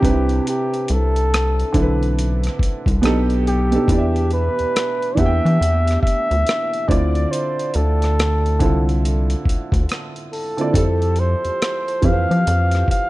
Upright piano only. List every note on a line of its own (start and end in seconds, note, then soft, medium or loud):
0.01 1.41 C3 medium
0.01 1.41 C4 medium
0.01 1.42 D4 medium
0.01 0.11 D#4 soft
0.01 1.43 B4 medium
0.10 1.46 E4 medium
1.72 3.02 D3 medium
1.72 3.02 C4 medium
1.72 3.01 D4 medium
1.72 3.03 E4 medium
1.72 1.83 A4 medium
1.82 3.07 B4 medium
3.02 3.56 B2 medium
3.02 3.56 B3 medium
3.02 3.56 D4 medium
3.02 3.57 D#4 medium
3.02 3.57 G4 medium
3.02 3.58 A4 loud
3.71 3.85 B2 medium
3.71 3.85 B3 medium
3.71 3.85 D4 medium
3.71 3.86 D#4 medium
3.71 3.86 G4 medium
3.71 3.86 A4 medium
3.88 4.94 E3 medium
3.88 4.95 B3 medium
3.88 4.95 D4 medium
3.88 4.96 G4 medium
3.88 3.98 D5 medium
3.98 4.99 E5 medium
5.15 6.54 E3 medium
5.15 6.54 B3 medium
5.15 6.55 D4 medium
5.15 6.55 G4 medium
5.19 5.26 F#5 medium
5.26 6.59 G5 medium
6.88 8.27 D3 medium
6.88 8.28 C4 medium
6.88 8.28 E4 medium
6.88 8.29 F4 medium
6.92 8.29 D5 medium
8.59 9.97 D3 medium
8.59 9.98 C4 medium
8.59 9.98 E4 medium
8.59 9.99 F4 medium
8.63 9.99 A4 medium
10.57 10.70 D3 medium
10.57 10.71 C4 medium
10.57 10.71 E4 medium
10.57 10.71 F4 medium
10.57 10.72 D5 medium
10.73 11.79 F3 medium
10.73 11.80 C4 medium
10.73 11.81 E4 medium
10.73 11.81 G4 medium
10.73 11.81 A4 medium
12.02 13.10 E3 medium
12.02 13.10 F3 medium
12.02 13.10 C4 medium
12.02 13.10 G4 medium
12.02 12.12 B4 medium
12.12 13.10 C5 medium